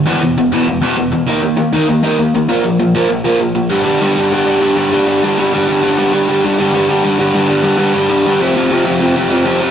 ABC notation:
X:1
M:4/4
L:1/8
Q:1/4=198
K:Flyd
V:1 name="Overdriven electric guitar" clef=bass
[E,,B,,E,] [E,,B,,] [E,,B,,] [E,,B,,E,] [E,,B,,] [E,,B,,E,] [E,,B,,] [E,,B,,] | [_E,_B,_E] [E,B,] [E,B,] [E,B,E] [E,B,] [E,B,E] [E,B,] [E,B,] | [_B,,F,_B,] [B,,F,] [B,,F,] [B,,F,B,] [B,,F,] [B,,F,B,] [B,,F,] [B,,F,] | [G,,D,G,] [G,,D,G,] [G,,D,G,] [G,,D,G,] [G,,D,G,] [G,,D,G,] [G,,D,G,] [G,,D,G,] |
[G,,D,G,] [G,,D,G,] [G,,D,G,] [G,,D,G,] [G,,D,G,] [G,,D,G,] [G,,D,G,] [G,,D,G,] | [G,,D,G,] [G,,D,G,] [G,,D,G,] [G,,D,G,] [G,,D,G,] [G,,D,G,] [G,,D,G,] [G,,D,G,] | [G,,D,G,] [G,,D,G,] [G,,D,G,] [G,,D,G,] [G,,D,G,] [G,,D,G,] [G,,D,G,] [F,,C,F,] | [F,,C,F,] [F,,C,F,] [F,,C,F,] [F,,C,F,] [F,,C,F,] [F,,C,F,] [F,,C,F,] [F,,C,F,] |]